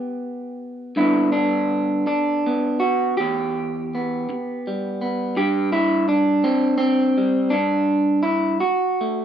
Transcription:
Already playing: clean electric guitar B3 G4
0.96 clean electric guitar G2 D3 B3 D4 E4
1.32 clean electric guitar D4
2.07 clean electric guitar D4, muted clean electric guitar stroke
2.46 clean electric guitar B3
2.80 clean electric guitar F#4
3.17 clean electric guitar E2 G4
3.95 clean electric guitar B3
4.29 muted clean electric guitar stroke
4.67 clean electric guitar G3
5.01 clean electric guitar B3
5.36 clean electric guitar G2 G4
5.72 clean electric guitar E4
6.09 clean electric guitar D4
6.44 clean electric guitar C4, muted clean electric guitar stroke
6.78 clean electric guitar C4
7.18 clean electric guitar G3
7.50 clean electric guitar G2 D4
8.23 clean electric guitar E4
8.60 clean electric guitar F#4, muted clean electric guitar stroke
9.01 clean electric guitar A3

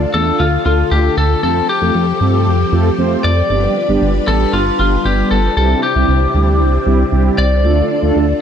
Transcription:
Already playing: string machine D3 D4 F4 A4
0.14 analog synth bass E2, analog polysynth A3 D4 F4 A4, lead electric guitar A4
0.40 analog synth bass D2, lead electric guitar F4
0.66 analog synth bass D2, analog polysynth A3 D4 F4 A4, lead electric guitar F4
0.91 analog synth bass D2, analog polysynth A3 D4 F4 A4, lead electric guitar G4
1.17 analog synth bass D2, lead electric guitar A4
1.43 analog synth bass F2, string machine F3 C4 G4, analog polysynth A3 C4 F4 A4, lead electric guitar A4
1.69 lead electric guitar G4
1.82 analog synth bass F2, analog polysynth A3 C4 F4 A4
1.95 analog synth bass F2
2.21 analog synth bass G2, analog polysynth A3 C4 F4 A4
2.47 analog synth bass F2
2.72 analog synth bass F2, analog polysynth A3 C4 F4 A4
2.98 analog synth bass F2, analog polysynth A3 C4 F4 C5
3.24 analog synth bass F2, lead electric guitar D5
3.50 analog synth bass G1, string machine G3 D4 F4 B4, analog polysynth G3 B3 D4 G4
3.89 analog synth bass G1, analog polysynth G3 B3 D4 G4
4.02 analog synth bass G1
4.28 analog synth bass A1, analog polysynth G3 B3 D4 G4, lead electric guitar A4
4.53 analog synth bass G1, lead electric guitar F4
4.79 analog synth bass G1, analog polysynth G3 B3 D4 G4, lead electric guitar F4
5.05 analog synth bass G1, analog polysynth G3 B3 D4 G4, lead electric guitar G4
5.31 analog synth bass G1, lead electric guitar A4
5.57 analog synth bass C2, string machine C3 C4 E4, analog polysynth G3 C4 E4 G4, lead electric guitar A4
5.83 lead electric guitar G4
5.96 analog synth bass C2, analog polysynth G3 C4 E4 G4
6.09 analog synth bass C2
6.35 analog synth bass D2, analog polysynth G3 C4 E4 G4
6.60 analog synth bass C2
6.86 analog synth bass C2, analog polysynth G3 C4 E4 G4
7.12 analog synth bass C2, analog polysynth G3 C4 E4 G4
7.38 analog synth bass C2, lead electric guitar D5
7.64 analog synth bass D2, string machine D3 F4 A4, analog polysynth A3 D4 F4 A4
8.03 analog synth bass D2, analog polysynth A3 D4 F4 A4
8.16 analog synth bass D2

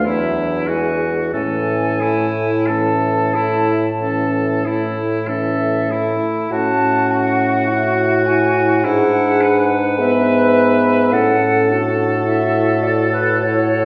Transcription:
0.05 bassoon E2, french horn F#3, clarinet D4, oboe E4, flute E5
0.67 french horn G#3, clarinet E4, oboe F#4, flute G#5
1.33 bassoon A2, french horn E3, clarinet C#4, oboe A4, flute G#5
2.00 french horn A3, oboe E4, clarinet E4
2.67 french horn E3, clarinet C#4, oboe A4, flute A5
3.34 french horn A3, oboe E4, clarinet E4
4.01 french horn E3, clarinet C#4, oboe A4
4.65 french horn A3, oboe E4, clarinet E4
5.27 french horn E3, clarinet C#4, oboe A4, flute E5
5.89 french horn A3, oboe E4, clarinet E4
6.51 bassoon A2, clarinet C#4, french horn F#4, oboe F#4, flute A5
7.11 flute F#5
7.68 french horn E4, clarinet F#4
8.26 clarinet E4, french horn F#4, flute G#5
8.84 bassoon G#2, clarinet D4, oboe E4, french horn G#4, flute F#5
9.41 oboe B4
9.99 clarinet B3, french horn B4, flute E5
11.12 bassoon A2, clarinet C#4, oboe A4, french horn A4, flute F#5
11.70 clarinet D4, french horn F#4
12.26 clarinet E4, flute E5
12.83 flute D5
13.12 flute B4
13.39 clarinet E4, flute C#5

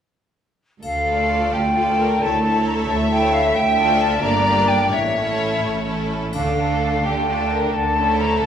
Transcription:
0.83 double bass section D2, cello section D2, violin section A4, flute F5, triangle
1.06 viola section A3 F4, violin section A4 D5
1.52 cello section D2, double bass section D2, violin section G4, flute G5
1.75 viola section A3 F4, violin section F4 A4 D5
1.99 violin section A#4
2.21 double bass section D2, cello section D2, viola section A3 E4, violin section A4 C#5, flute A5
2.44 viola section A3 E4, violin section A4 C#5
2.67 flute A#5
2.88 double bass section D2, cello section D2, violin section E5, flute A5
3.10 viola section A3 E4, violin section A4 C#5, flute G5
3.33 flute F5
3.45 flute E5
3.54 cello section D2, double bass section D2, flute G5
3.77 viola section A3 F4, violin section A4 D5
4.00 flute A5
4.22 double bass section G1, cello section G2, viola section A#3 D4, violin section G4 D5, flute A#5
4.45 viola section A#3 D4, violin section G4 D5
4.68 flute G5
4.92 double bass section A1, cello section A2, violin section C#5, flute E5
5.15 viola section A3 C#4, violin section E4 A4
5.62 double bass section A1, cello section A2
5.86 viola section A3 C#4, violin section E4 A4
6.33 double bass section D2, cello section D3, viola section A3 D4, violin section D4 A4, flute F5, triangle
6.57 viola section A3 D4, violin section D4 A4
7.03 double bass section D2, cello section D3, violin section G4, flute G5
7.26 viola section A3 D4, violin section D4 F4 A4
7.50 violin section A#4
7.72 double bass section D2, cello section D3, violin section A4, flute A5
7.94 viola section A3 C#4, violin section E4 A4
8.19 flute A#5
8.39 double bass section D2, cello section D3, flute A5

